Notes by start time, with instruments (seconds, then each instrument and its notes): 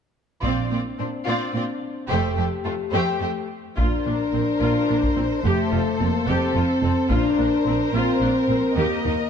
0.42 double bass section A#1, cello section A#2, viola section C4, french horn section C4 D4, violin section F4 D5, taiko
0.71 cello section A#2, viola section C4, violin section F4 D5
0.99 cello section A#2, viola section C4, violin section D4 C5
1.26 cello section A#2, viola section C4, violin section F4 D5
1.54 cello section A#2, viola section C4, violin section F4 D5
2.09 double bass section F1, cello section F2, viola section A3, french horn section A3 G4, violin section G4 C5
2.36 cello section F2, viola section A3, violin section G4 C5
2.64 cello section F2, viola section A3, violin section F4 A4
2.92 cello section F2, viola section A3, violin section G4 C5
3.20 cello section F2, viola section A3, violin section G4 C5
3.77 double bass section A#1, cello section A#2, french horn section D4, viola section F4, violin section A#4 C5, taiko
4.06 double bass section A#1, cello section A#2, viola section D4
4.33 double bass section A#1, cello section A#2, viola section C4
4.61 double bass section A#1, cello section A#2, viola section F4
4.89 double bass section A#1, cello section A#2, viola section D4
5.03 taiko
5.16 double bass section A#1, cello section A#2, viola section C4
5.44 double bass section F1, cello section F2, french horn section A3, viola section G4, violin section A4
5.71 double bass section F1, cello section F2, viola section F4
6.00 double bass section F1, cello section F2, french horn section A#3, viola section C4
6.27 double bass section F1, cello section F2, french horn section C4, viola section G4
6.55 double bass section F1, cello section F2, viola section F4
6.82 double bass section F1, cello section F2, viola section C4
7.09 double bass section A#1, cello section A#2, french horn section D4, viola section F4, violin section A#4 C5, taiko
7.38 double bass section A#1, cello section A#2, viola section D4
7.66 double bass section A#1, cello section A#2, viola section C4
7.92 double bass section A#1, cello section A#2, french horn section C4, viola section F4
8.20 double bass section A#1, cello section A#2, viola section D4
8.48 double bass section A#1, cello section A#2, viola section C4
8.76 double bass section D#2, cello section D#3, french horn section A#3, viola section G4, violin section D#5
9.05 double bass section D#2, cello section D#3, viola section D#4